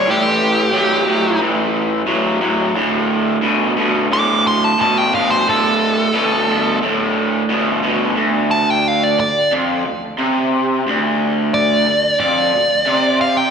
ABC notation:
X:1
M:4/4
L:1/16
Q:1/4=89
K:Aphr
V:1 name="Lead electric guitar"
G8 z8 | z8 d'2 c' a a g f c | A8 z8 | z2 a g f d d2 z8 |
z4 d4 d6 f g |]
V:2 name="Overdriven electric guitar" clef=bass
[A,,E,]4 [A,,^F,]2 [A,,F,]2 [A,,E,]4 [A,,F,]2 [A,,F,]2 | [D,,A,,]4 [D,,=B,,]2 [D,,B,,]2 [D,,A,,]4 [D,,B,,]2 [D,,B,,]2 | [D,,A,,]4 [D,,=B,,]2 [D,,B,,]2 [D,,A,,]4 [D,,B,,]2 [D,,B,,]2 | D,,6 D,,2 F,,2 D,,2 C,4 |
D,,6 D,,2 F,,2 D,,2 C,4 |]